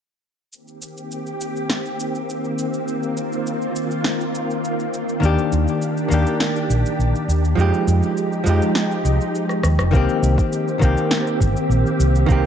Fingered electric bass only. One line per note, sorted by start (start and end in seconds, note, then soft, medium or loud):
5.22 5.35 D#2 medium
5.52 5.65 D#2 medium
6.11 6.23 D#2 medium
6.70 6.82 A#1 medium
6.99 7.11 A#1 medium
7.28 7.53 D#2 medium
7.57 7.70 F2 medium
7.87 8.00 F2 medium
8.46 8.59 F2 medium
9.04 9.17 C2 medium
9.63 9.76 D#2 medium
9.78 9.91 F1 medium
9.93 10.06 C2 medium
10.22 10.35 C2 medium
10.82 10.94 C2 medium
11.40 11.53 G1 medium
11.69 11.82 A#1 medium
11.99 12.24 C2 medium
12.29 12.41 C2 medium